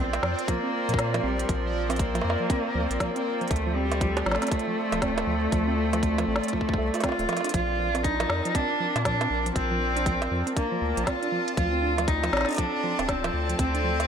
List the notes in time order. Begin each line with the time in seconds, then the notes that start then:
Already playing: A#1 C4 F4 A#4 C5 D5
0.13 closed hi-hat, high bongo
0.23 F2 F3, snare
0.39 closed hi-hat
0.48 F3 A#3, kick, closed hi-hat
0.64 C4
0.89 A#2 F3, closed hi-hat
0.94 kick
0.99 snare, closed hi-hat
1.14 F3, closed hi-hat, high bongo
1.24 A#1 G3 C4
1.39 closed hi-hat
1.49 A#1 F3, kick, closed hi-hat
1.74 F3
1.90 C4, closed hi-hat, high bongo
1.96 A#3, kick, closed hi-hat
1.99 closed hi-hat
2.15 F3, closed hi-hat, high bongo
2.21 F2, high bongo
2.30 high bongo
2.40 F3
2.50 C4, kick, closed hi-hat
2.75 D2 F3
2.91 A#1, closed hi-hat
3.00 F3 A#3, kick, snare, closed hi-hat
3.16 C4, closed hi-hat
3.41 F3, closed hi-hat
3.48 D2 A3, kick, closed hi-hat
3.51 F4 A4 D5, closed hi-hat
3.56 closed hi-hat
3.66 F3
3.76 G3 C4
3.92 closed hi-hat, high bongo
4.01 F3, kick, closed hi-hat
4.17 closed hi-hat, high bongo
4.26 A1 F3 A3, snare
4.31 snare
4.35 snare
4.42 C4, snare, closed hi-hat
4.47 snare, closed hi-hat
4.51 kick, closed hi-hat
4.59 closed hi-hat
4.67 F3
4.92 D1 F3, closed hi-hat, high bongo
5.02 C4, kick, snare, closed hi-hat
5.18 closed hi-hat, high bongo
5.27 D2 F3
5.52 D2 F3, kick, closed hi-hat
5.68 C4
5.93 F3, closed hi-hat, high bongo
6.03 kick, closed hi-hat
6.18 F3, closed hi-hat, high bongo
6.28 A1 C4
6.36 snare
6.43 closed hi-hat
6.48 closed hi-hat
6.53 F3, kick
6.61 kick
6.69 kick
6.74 kick
6.78 C2 A3
6.94 F4, closed hi-hat, high bongo
7.00 C4 F4, kick, snare, closed hi-hat, high bongo
7.04 closed hi-hat, high bongo
7.09 high bongo
7.12 high bongo
7.19 D1 A3, closed hi-hat
7.29 F3, closed hi-hat, high bongo
7.33 closed hi-hat, high bongo
7.37 high bongo
7.41 D4, closed hi-hat, high bongo
7.44 high bongo
7.47 closed hi-hat, high bongo
7.49 high bongo
7.52 A#1 F3 C4 F4 A#4 A5, kick, closed hi-hat, high bongo
7.79 F3
7.95 C4, closed hi-hat, high bongo
8.04 D4 D#4, kick, closed hi-hat
8.20 F3, closed hi-hat, high bongo
8.30 F2, snare
8.45 F3, closed hi-hat
8.54 C4 D4, kick, closed hi-hat
8.70 D4
8.80 F3
8.96 A#2, closed hi-hat, high bongo
9.05 F3 D4, kick, snare, closed hi-hat
9.21 C4, closed hi-hat, high bongo
9.30 A#1 D4
9.46 F3, closed hi-hat
9.55 A#1 C4, kick, closed hi-hat
9.71 F3
9.81 C4
9.96 D4, closed hi-hat
10.06 F3, kick, closed hi-hat
10.22 closed hi-hat, high bongo
10.31 F2 F3
10.47 C4, closed hi-hat
10.56 A#3 D4, kick, closed hi-hat
10.72 F3
10.82 D2
10.97 A#1 F3, closed hi-hat
11.07 C4 F4, kick, snare, closed hi-hat
11.22 D4, closed hi-hat
11.32 F3
11.48 closed hi-hat
11.57 D2 F3 F4 A4 D5, kick, closed hi-hat
11.73 C4
11.82 D4
11.98 F3, closed hi-hat, high bongo
12.07 D#4, kick, closed hi-hat
12.23 F3, closed hi-hat, high bongo
12.33 A1 C4, snare
12.37 snare
12.41 snare
12.45 D4, snare, closed hi-hat
12.51 closed hi-hat
12.53 closed hi-hat
12.54 closed hi-hat
12.56 F3 D4, kick, closed hi-hat
12.58 closed hi-hat
12.83 F3
12.99 D1 C4, closed hi-hat, high bongo
13.08 C4 D4, kick, snare, closed hi-hat
13.24 F3, closed hi-hat, high bongo
13.34 D2
13.49 F3, closed hi-hat
13.59 D2 C4, kick, closed hi-hat
13.75 D4, closed hi-hat
13.84 F3
14.00 closed hi-hat, high bongo